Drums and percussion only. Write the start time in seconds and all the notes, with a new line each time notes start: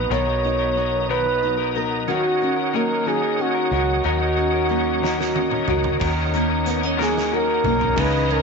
5.05 snare
5.21 snare
5.36 high tom
5.51 mid tom
5.68 mid tom
5.84 floor tom
6.01 kick, crash
6.34 closed hi-hat
6.66 closed hi-hat
7.01 snare
7.18 snare
7.65 mid tom
7.81 floor tom
7.98 kick, crash
8.30 ride